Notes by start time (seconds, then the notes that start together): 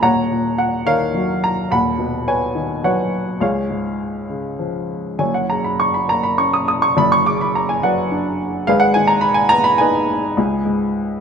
0.02 D#1 D#2 C#5 F#5 A#5
0.31 A#2
0.58 F#5
0.86 D#3 A#4 C#5 F5
1.14 F#3
1.44 A#5
1.71 D#1 D#2 F#5 B5
1.99 B2
2.28 B4 C#5 G#5
2.55 D#3
2.84 F#3 B4 C#5 F#5
3.41 C#2 G#4 C#5 F5
3.70 G#2
4.30 C#3
4.59 F3
5.19 F#1 F#2 C#5 G#5
5.34 F#5
5.50 C#3 A#5
5.64 B5
5.80 C#6
5.94 B5
6.08 A#3 A#5
6.23 B5
6.38 C#4 C#6
6.54 D#6
6.68 D#6
6.82 C#6
6.97 F#1 F#2 D5 B5
7.12 C#6
7.25 C#3 D6
7.41 B5
7.55 A#5
7.69 G#5
7.83 F#3 B4 D5 F#5
8.11 D4
8.67 G#1 G#2 G#4 B4 F5
8.80 F#5
8.94 D#3 G#5
9.07 A#5
9.21 B5
9.34 G#5
9.49 B3 A#5
9.64 B5
9.78 D#4 B4 D#5 G#5
10.37 C#2
10.65 G#2